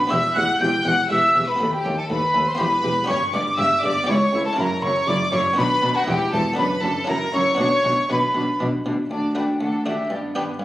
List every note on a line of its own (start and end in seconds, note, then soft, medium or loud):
0.00 0.12 B4 medium
0.00 0.10 B5 loud
0.00 0.12 B5 medium
0.07 0.19 E2 medium
0.07 1.54 B3 medium
0.07 1.55 E4 medium
0.07 1.56 G4 medium
0.07 0.36 E5 medium
0.07 0.36 E6 loud
0.07 0.35 E6 medium
0.12 0.20 E1 medium
0.12 0.34 E2 medium
0.12 0.21 G4 medium
0.34 0.45 E1 medium
0.34 0.59 E2 medium
0.34 0.45 E2 medium
0.34 0.45 G4 medium
0.34 0.61 F#5 medium
0.34 0.59 F#6 loud
0.34 0.42 F#6 medium
0.59 0.70 E1 medium
0.59 0.69 E2 medium
0.59 0.84 E2 medium
0.59 0.70 G4 medium
0.59 0.86 G5 medium
0.59 0.85 G6 loud
0.59 0.67 G6 medium
0.83 0.95 E1 medium
0.83 1.08 E2 medium
0.83 0.94 E2 medium
0.83 0.94 G4 medium
0.83 1.11 F#5 loud
0.83 1.10 F#6 loud
0.83 1.11 F#6 loud
1.10 1.19 E1 medium
1.10 1.33 E2 medium
1.10 1.19 E2 medium
1.10 1.18 G4 medium
1.10 1.47 E5 medium
1.10 1.47 E6 loud
1.10 1.47 E6 medium
1.35 1.44 E1 medium
1.35 1.58 E2 medium
1.35 1.44 E2 medium
1.35 1.44 G4 medium
1.47 1.55 B4 medium
1.47 1.73 B5 loud
1.47 1.73 B5 medium
1.56 2.54 B3 medium
1.56 2.55 F#4 medium
1.56 2.56 A4 medium
1.60 1.83 D#2 medium
1.60 1.69 D#2 medium
1.60 1.68 A4 medium
1.72 1.98 G4 medium
1.72 1.97 G5 loud
1.72 2.01 G5 medium
1.84 1.93 D#2 medium
1.84 1.94 D#2 medium
1.84 2.08 D#2 medium
1.84 1.92 A4 medium
1.98 2.10 A4 medium
1.98 2.04 A5 loud
1.98 2.10 A5 medium
2.09 2.32 D#2 medium
2.09 2.18 D#2 medium
2.09 2.17 A4 medium
2.09 2.47 B4 medium
2.09 2.46 B5 loud
2.09 2.46 B5 medium
2.34 2.57 D#2 medium
2.34 2.43 D#2 medium
2.34 2.42 A4 medium
2.47 2.60 C5 loud
2.47 2.61 C6 medium
2.47 2.60 C6 loud
2.55 3.03 B3 medium
2.55 3.06 E4 medium
2.55 3.06 G4 medium
2.59 2.68 E1 medium
2.59 2.82 E2 medium
2.59 2.68 E2 medium
2.59 2.67 G4 medium
2.59 3.09 B4 loud
2.59 2.86 B5 medium
2.59 3.09 B5 loud
2.83 2.93 E1 medium
2.83 2.92 E2 medium
2.83 3.07 E2 medium
2.83 2.91 G4 medium
3.04 4.03 B3 medium
3.04 4.04 D4 medium
3.04 4.05 G4 medium
3.04 3.32 C#6 loud
3.09 3.17 G1 medium
3.09 3.31 G2 medium
3.09 3.17 G2 medium
3.09 3.17 G4 medium
3.09 3.17 C#5 loud
3.09 3.34 C#6 loud
3.33 3.42 G1 medium
3.33 3.56 G2 medium
3.33 3.42 G2 medium
3.33 3.42 G4 medium
3.33 3.42 D5 medium
3.33 3.58 D6 medium
3.33 3.59 D6 loud
3.58 3.67 G1 medium
3.58 3.81 G2 medium
3.58 3.68 G2 medium
3.58 3.67 G4 medium
3.58 3.83 E5 medium
3.58 3.83 E6 loud
3.58 3.84 E6 loud
3.82 3.91 G1 medium
3.82 4.06 G2 medium
3.82 3.92 G2 medium
3.82 3.92 G4 medium
3.82 4.08 D5 loud
3.82 4.08 D6 loud
3.82 4.10 D6 loud
4.04 4.54 B3 medium
4.04 4.53 E4 medium
4.04 4.56 G4 medium
4.04 4.45 C#5 loud
4.04 4.45 C#6 loud
4.08 4.31 C#2 medium
4.08 4.17 C#2 medium
4.08 4.17 E4 medium
4.08 4.44 C#6 loud
4.33 4.55 C#2 medium
4.33 4.42 C#2 medium
4.33 4.42 E4 medium
4.45 4.58 A4 medium
4.45 4.60 A5 medium
4.45 4.59 A5 loud
4.53 5.52 C#4 medium
4.53 5.53 E4 medium
4.53 5.54 F#4 medium
4.57 4.66 F#1 medium
4.57 4.80 F#2 medium
4.57 4.67 F#2 loud
4.57 4.66 E4 medium
4.57 4.82 A#4 medium
4.57 4.84 A#5 medium
4.57 4.84 A#5 loud
4.82 4.91 F#1 medium
4.82 5.05 F#2 medium
4.82 4.92 F#2 medium
4.82 4.90 E4 medium
4.82 5.07 C#5 loud
4.82 5.10 C#6 loud
4.82 5.08 C#6 loud
5.08 5.16 F#1 medium
5.08 5.30 F#2 medium
5.08 5.16 F#2 medium
5.08 5.16 E4 medium
5.08 5.33 D5 medium
5.08 5.32 D6 loud
5.08 5.33 D6 loud
5.32 5.40 F#1 medium
5.32 5.55 F#2 medium
5.32 5.41 F#2 medium
5.32 5.40 E4 medium
5.32 5.57 C#5 loud
5.32 5.60 C#6 loud
5.32 5.41 C#6 loud
5.53 5.65 B1 medium
5.53 6.03 B3 medium
5.53 6.05 D4 medium
5.53 5.65 D4 medium
5.53 6.06 F#4 medium
5.58 5.66 B2 medium
5.58 5.81 B2 medium
5.58 5.95 B4 loud
5.58 5.95 B5 loud
5.82 5.90 B1 medium
5.82 6.05 B2 medium
5.82 5.91 B2 medium
5.82 5.90 D4 medium
5.95 6.08 F#4 medium
5.95 6.08 F#5 medium
5.95 6.09 F#5 loud
6.04 6.16 E2 loud
6.04 6.52 B3 medium
6.04 6.56 E4 medium
6.04 6.14 E4 medium
6.04 6.56 G4 medium
6.04 6.32 G4 loud
6.08 6.16 E1 medium
6.08 6.31 E2 medium
6.08 6.32 G5 medium
6.08 6.34 G5 loud
6.32 6.40 E1 medium
6.32 6.42 E2 medium
6.32 6.56 E2 medium
6.32 6.40 E4 medium
6.32 6.58 A4 medium
6.32 6.39 A5 medium
6.32 6.58 A5 loud
6.54 7.04 B3 medium
6.54 7.05 D4 medium
6.54 7.06 F#4 medium
6.54 6.82 B5 loud
6.58 6.66 F#1 medium
6.58 6.81 F#2 medium
6.58 6.66 F#2 medium
6.58 6.66 D4 medium
6.58 6.83 B4 medium
6.58 6.64 B5 medium
6.82 6.91 F#1 medium
6.82 6.91 F#2 medium
6.82 7.06 F#2 medium
6.82 6.91 D4 medium
6.82 7.08 A4 medium
6.82 7.08 A5 loud
6.82 6.90 A5 medium
7.04 7.16 F#1 medium
7.04 7.55 C#4 medium
7.04 7.56 E4 medium
7.04 7.16 E4 medium
7.04 7.57 F#4 medium
7.04 7.33 A#5 loud
7.09 7.17 F#2 medium
7.09 7.31 F#2 medium
7.09 7.34 A#4 loud
7.09 7.33 A#5 medium
7.33 7.41 F#1 medium
7.33 7.42 F#2 medium
7.33 7.57 F#2 medium
7.33 7.42 E4 medium
7.33 7.58 C#5 loud
7.33 7.59 C#6 medium
7.33 7.58 C#6 loud
7.55 7.66 B1 medium
7.55 9.05 B3 medium
7.55 9.06 D4 medium
7.55 9.06 F#4 medium
7.59 7.82 B2 medium
7.59 7.68 B2 medium
7.59 7.67 D4 medium
7.59 8.09 C#5 loud
7.59 8.09 C#6 loud
7.84 7.92 B1 medium
7.84 8.07 B2 medium
7.84 7.93 B2 medium
7.84 7.92 D4 medium
8.09 8.17 B1 medium
8.09 8.33 B2 medium
8.09 8.19 B2 medium
8.09 8.18 D4 medium
8.09 8.60 B4 medium
8.09 8.61 B5 medium
8.09 8.60 B5 medium
8.35 8.43 B1 medium
8.35 8.58 B2 medium
8.35 8.44 B2 medium
8.35 8.43 D4 medium
8.59 8.68 B1 medium
8.59 8.83 B2 medium
8.59 8.69 B2 medium
8.59 8.67 D4 medium
8.85 8.93 B1 medium
8.85 8.94 B2 medium
8.85 9.09 B2 medium
8.85 8.93 D4 medium
9.10 9.55 D2 soft
9.10 9.52 D2 soft
9.10 9.34 D4 soft
9.10 9.35 F#4 soft
9.10 9.34 D5 medium
9.10 9.35 A5 medium
9.35 9.71 A3 soft
9.35 9.72 D4 soft
9.35 9.59 D4 soft
9.35 9.72 F#4 soft
9.35 9.60 F#4 soft
9.35 9.44 B4 soft
9.35 9.61 G5 soft
9.60 10.02 D2 soft
9.60 10.05 D2 soft
9.60 9.84 D4 soft
9.60 9.84 F#4 soft
9.60 9.86 A4 soft
9.60 9.69 F#5 medium
9.85 10.04 A3 soft
9.85 10.10 D4 soft
9.85 10.04 D4 soft
9.85 10.10 F#4 soft
9.85 10.04 F#4 soft
9.85 10.10 G4 soft
9.85 10.13 E5 medium
10.10 10.52 G2 soft
10.10 10.55 G2 soft
10.10 10.35 B3 soft
10.10 10.35 D4 soft
10.10 10.19 G4 soft
10.10 10.36 D5 medium
10.35 10.54 B3 soft
10.35 10.60 B3 soft
10.35 10.54 D4 soft
10.35 10.60 D4 soft
10.35 10.54 G4 soft
10.35 10.44 B4 soft
10.35 10.43 G5 medium
10.60 10.65 G2 soft
10.60 10.65 B3 soft
10.60 10.65 D4 soft
10.60 10.65 B4 medium
10.60 10.65 F5 medium